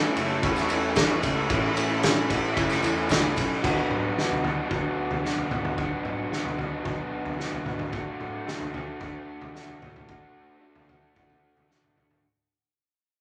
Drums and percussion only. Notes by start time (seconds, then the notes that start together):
0.02 tambourine
0.16 ride, tambourine
0.43 kick, ride
0.56 snare, tambourine
0.69 ride, tambourine
0.83 tambourine
0.96 kick, snare, ride, tambourine
1.09 tambourine
1.23 kick, ride, tambourine
1.49 kick, ride, tambourine
1.76 ride, tambourine
1.89 tambourine
2.03 snare, ride, tambourine
2.30 kick, ride, tambourine
2.43 tambourine
2.56 kick, ride, tambourine
2.70 snare, tambourine
2.82 ride, tambourine
3.09 kick, snare, ride, tambourine
3.23 tambourine
3.37 kick, ride, tambourine
3.64 kick, floor tom, crash
3.91 mid tom
4.18 snare
4.31 floor tom
4.44 floor tom
4.71 kick, floor tom
5.11 floor tom
5.25 snare
5.37 floor tom
5.51 floor tom, mid tom
5.65 floor tom, mid tom
5.78 kick, floor tom
6.05 mid tom
6.33 snare
6.45 floor tom
6.58 floor tom
6.85 kick, floor tom
7.26 floor tom
7.40 snare
7.52 floor tom
7.66 floor tom, mid tom
7.79 floor tom, mid tom
7.93 kick, floor tom
8.20 mid tom
8.48 snare
8.60 floor tom
8.74 floor tom
9.00 kick, floor tom
9.41 floor tom
9.55 snare
9.68 floor tom
9.82 floor tom, mid tom
9.96 floor tom, mid tom
10.09 kick, floor tom
10.75 floor tom
10.89 floor tom
11.16 kick, floor tom
11.30 floor tom
11.57 floor tom
11.71 snare
11.84 floor tom, mid tom
11.97 floor tom, mid tom
12.11 floor tom, mid tom